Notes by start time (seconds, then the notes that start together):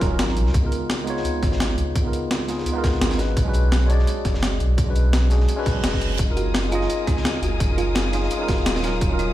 0.01 D#1, kick, snare, closed hi-hat
0.08 F#3 C#4 D#4
0.12 F4 A#4
0.19 G#1, snare, closed hi-hat
0.28 snare
0.37 A#1, closed hi-hat
0.46 C#2, snare
0.54 C#2, kick, closed hi-hat
0.60 G#3 B3 D#4
0.65 F4 A#4
0.72 closed hi-hat
0.90 snare, closed hi-hat
0.99 closed hi-hat
1.04 G#3 B3 D#4, closed hi-hat
1.09 F4 C#5
1.17 snare
1.25 closed hi-hat
1.43 G#1, kick, snare, closed hi-hat
1.52 snare
1.60 snare, closed hi-hat
1.78 C#2, closed hi-hat
1.95 C#2, kick, closed hi-hat
2.02 G#3 B3 D#4
2.06 F4 A#4
2.13 closed hi-hat
2.31 snare, closed hi-hat
2.47 G#3 B3 D#4 F4 G#4, snare, closed hi-hat
2.58 snare
2.66 closed hi-hat
2.72 G#3 B3 D#4
2.77 F4 A#4
2.84 C#2, kick, snare, closed hi-hat
2.93 closed hi-hat
3.01 G#1, snare, closed hi-hat
3.11 snare, closed hi-hat
3.18 G#3 C#4 D4 F#4 B4, snare, closed hi-hat
3.37 B1, kick, closed hi-hat
3.43 G#3 C#4 D4
3.48 F#4 B4
3.54 closed hi-hat
3.72 snare, closed hi-hat
3.82 closed hi-hat
3.86 G#3 D4 C#5, closed hi-hat
3.91 F#4 D5
3.99 snare
4.07 closed hi-hat
4.25 F#1, kick, snare, closed hi-hat
4.34 snare
4.43 snare, closed hi-hat
4.60 B1, closed hi-hat
4.78 B1, kick, closed hi-hat
4.84 G#3 C#4 D4
4.89 F#4 B4
4.95 closed hi-hat
5.13 snare, closed hi-hat
5.29 G#3 C#4 D4 F#4 G#4, snare, closed hi-hat
5.40 snare
5.49 closed hi-hat, reverse cymbal
5.56 G#3 C#4 D4 F#4 B4
5.66 B1, kick, snare, closed hi-hat
5.72 G#3 C#4 D4
5.77 F#4 B4
5.84 F#1, snare, closed hi-hat
5.93 kick, snare
6.01 closed hi-hat
6.11 snare
6.19 F#1 A#4 F5 G#5 D#6, kick, closed hi-hat
6.25 G#3 C#4 D#4
6.30 F4 A#4
6.37 F#4, closed hi-hat
6.54 snare, closed hi-hat
6.64 closed hi-hat
6.69 G#3 C#4 D#4 F4, closed hi-hat
6.73 F4 D#5
6.81 snare
6.89 closed hi-hat
7.07 C#2 D#4, kick, snare, closed hi-hat
7.17 snare
7.25 snare, closed hi-hat
7.43 F#1 F#4, closed hi-hat
7.60 F#1, kick, closed hi-hat
7.67 G#3 C#4 D#4
7.71 F4 A#4
7.78 F4, closed hi-hat
7.95 snare, closed hi-hat
8.12 G#3 C#4 D#4 F4 G#4, snare, closed hi-hat
8.23 snare
8.30 closed hi-hat
8.37 G#3 C#4 D#4
8.42 F4 A#4
8.48 F#1 F#4, kick, snare, closed hi-hat
8.57 closed hi-hat
8.65 D#1, snare, closed hi-hat
8.76 snare, closed hi-hat
8.82 F#3 C#4 D#4 F4 A#4 C#5, snare, closed hi-hat
9.01 D#1, kick, closed hi-hat
9.07 F#3 C#4 D#4
9.12 F4 A#4
9.19 D#4, closed hi-hat